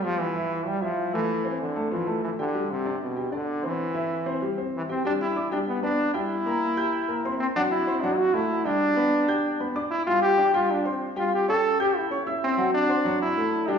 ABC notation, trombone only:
X:1
M:4/4
L:1/8
Q:1/4=191
K:Gmix
V:1 name="Trombone"
F, E,3 G, F,2 E,- | E,2 D,2 E,2 E, D,- | D, C,2 B,,2 D,2 E,- | E,4 z2 E, C |
D E2 D B, D2 E- | E6- E C | D E2 D ^F E2 D- | D4- D z2 E |
F G2 F D z2 F | G A2 G E z2 C- | C D3 E3 D |]